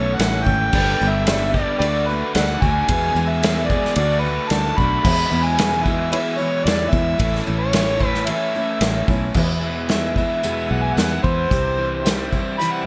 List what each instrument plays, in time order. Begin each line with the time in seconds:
Already playing: fingered electric bass B1, overdriven electric guitar A2 E3 A3 C#4 A4, steel-string acoustic guitar A3 C#4 A4, tonewheel organ A4 E5 C#6, harmonica C#5
0.15 harmonica F#5
0.19 fingered electric bass A1, upright piano E4 A4 C#5 E5, snare, ride bell
0.43 fingered electric bass G#1, steel-string acoustic guitar A3 C#4 A4, harmonica G5, kick
0.72 fingered electric bass G1, overdriven electric guitar G2 D3 G4, steel-string acoustic guitar G3 B3 D4 A4, upright piano G4 A4 B4 D5, tonewheel organ G5 B5, kick, crash
1.01 fingered electric bass G1, steel-string acoustic guitar G3 B3 D4 A4
1.09 harmonica E5
1.27 steel-string acoustic guitar G3 B3 D4 A4, upright piano G4 A4 B4 D5, snare, ride bell
1.51 overdriven electric guitar G4, harmonica D5, kick
1.56 overdriven electric guitar G2 D3 G3, steel-string acoustic guitar B3 D4 A4
1.79 fingered electric bass D2, upright piano D4 F#4 A4 D5, harmonica G4 B4 D5, ride bell
1.83 steel-string acoustic guitar D3 A3 D4 F#4, tonewheel organ F#5 D6
2.08 steel-string acoustic guitar A3 D4 F#4, harmonica B4
2.34 fingered electric bass D2, upright piano D4 F#4 A4 D5, harmonica F#5, snare, ride bell
2.62 fingered electric bass D2, overdriven electric guitar D3, steel-string acoustic guitar A3 D4 F#4, harmonica G#5, kick
2.88 fingered electric bass E2, steel-string acoustic guitar E2 B2 E3 G#3 B3 G#4, upright piano E4 G#4 B4 E5, tonewheel organ B4 G#5 E6, kick, ride bell
3.15 fingered electric bass E2, steel-string acoustic guitar E2 B2 E3 G#3 B3 G#4
3.28 harmonica E5
3.41 steel-string acoustic guitar E2 B2 E3 G#3 B3 G#4, upright piano E4 G#4 B4 E5, snare, ride bell
3.67 steel-string acoustic guitar G#4, harmonica D5, kick
3.71 overdriven electric guitar E2 B2, steel-string acoustic guitar E3 G#3 B3
3.85 snare
3.95 fingered electric bass D2, steel-string acoustic guitar D3 A3, upright piano D4 F#4 A4 D5, tonewheel organ A4 F#5 D6, harmonica D5, ride bell
3.99 steel-string acoustic guitar D4 F#4
4.21 harmonica B4
4.25 steel-string acoustic guitar A3 D4 F#4
4.49 fingered electric bass D2, upright piano D4 F#4 A4 D5, harmonica A5, snare, ride bell
4.78 fingered electric bass B1, overdriven electric guitar D3, steel-string acoustic guitar A3 D4 F#4, harmonica B5, kick
5.03 steel-string acoustic guitar E2 B2 E3 G#3 B3 E4, fingered electric bass E2, upright piano E4 G#4 B4 E5, tonewheel organ B4 G#5 E6, kick, crash
5.31 fingered electric bass E2, steel-string acoustic guitar E2 B2 E3 G#3 B3 E4
5.44 harmonica G#5
5.58 steel-string acoustic guitar E2 B2 E3 G#3 B3 E4, upright piano E4 G#4 B4 E5, snare, ride bell
5.83 overdriven electric guitar E2 B2, steel-string acoustic guitar B3 E4, harmonica E5, kick
5.88 steel-string acoustic guitar E3 G#3
6.10 steel-string acoustic guitar E3 G#3 B3 E4, upright piano E4 G#4 B4 E5, harmonica B4 C#5 E5, ride bell
6.38 steel-string acoustic guitar E3 G#3 B3 E4, harmonica C#5
6.65 fingered electric bass E2, upright piano E4 G#4 B4 C#5, harmonica D5, snare, ride bell
6.90 fingered electric bass E2, steel-string acoustic guitar G#3 B3 E4, harmonica E5, kick
6.94 steel-string acoustic guitar E3
7.17 fingered electric bass A1, steel-string acoustic guitar A2 E3 A3 C#4 E4, upright piano E4 A4 C#5 E5, tonewheel organ C#5 A5, kick, ride bell
7.35 snare
7.46 fingered electric bass A1, steel-string acoustic guitar A2 E3 A3 C#4 E4
7.59 harmonica C#5
7.73 steel-string acoustic guitar A2 E3 A3 C#4 E4, upright piano E4 A4 C#5 E5, snare, ride bell
7.99 overdriven electric guitar A2 E3, steel-string acoustic guitar A3 C#4 E4, kick
8.07 harmonica B4
8.15 snare
8.26 steel-string acoustic guitar E3 A3 C#4 E4, upright piano E4 A4 C#5 E5, harmonica E5, ride bell
8.55 steel-string acoustic guitar A3 C#4 E4
8.81 fingered electric bass A1, upright piano E4 A4 C#5 E5, snare, ride bell
9.08 fingered electric bass B1, steel-string acoustic guitar A3 C#4 E4, kick
9.34 fingered electric bass E2, steel-string acoustic guitar E2 B2 E3 G#3 B3 E4, upright piano E4 G#4 B4, tonewheel organ B4 G#5 E6, kick, crash
9.64 overdriven electric guitar E3
9.89 steel-string acoustic guitar E3 G#3, upright piano E4 G#4 B4, harmonica E5, snare, closed hi-hat
9.93 steel-string acoustic guitar B3 E4
10.16 steel-string acoustic guitar E3 G#3 B3 E4, harmonica E5, kick
10.43 steel-string acoustic guitar E2 B2 E3 G#3 B3 E4, upright piano E4 G#4 B4, closed hi-hat
10.70 fingered electric bass B1, overdriven electric guitar E3, harmonica F#5
10.83 harmonica G#5
10.93 fingered electric bass E2, harmonica F#5, closed hi-hat
10.98 steel-string acoustic guitar E3 G#3 B3 E4, upright piano E4 G#4 B4, snare
11.23 fingered electric bass E2, overdriven electric guitar E4, harmonica C5, kick
11.50 fingered electric bass C2, steel-string acoustic guitar C3 E3 G3 C4 E4, upright piano E4 G4 C5, tonewheel organ C5 G5, kick, closed hi-hat
11.79 overdriven electric guitar E3
12.02 steel-string acoustic guitar E3 G3 C4, upright piano E4 G4 C5, closed hi-hat
12.07 steel-string acoustic guitar E4, snare
12.33 steel-string acoustic guitar G3 C4 E4, kick
12.58 steel-string acoustic guitar C3 E3 G3 C4 E4, upright piano E4 G4 C5, harmonica B5, closed hi-hat
12.72 harmonica F#5